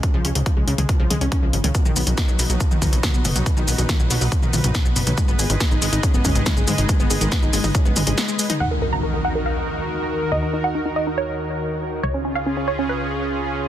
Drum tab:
HH |x-xxx-xxx-xxx-xx|x-oxx-oxx-oxx-ox|x-oxx-oox-oxx-ox|x-oxx-oxx-oxx-ox|
SH |----------------|xxxxxxxxxxxxxxxx|xxxxxxxxxxxxxxxx|xxxxxxxxxxxxxxxx|
SD |----------------|----o-------o---|----o-o-----o---|----o-------o---|
T2 |-------o--o----o|----------o-o-o-|----------o----o|----------o-o-o-|
BD |o---o---o---o---|o---o---o-o-o---|o---o---o---o---|o---o---o-o-o---|

HH |x-oxx-oox-oxx-ox|----------------|----------------|----------------|
SH |xxxxxxxxxxxxxxxx|----------------|----------------|----------------|
SD |----o-o-----o---|----------------|----------------|----------------|
T2 |-------o--o----o|----------------|----------------|----------------|
BD |o---o---o-------|----------------|----------------|----------------|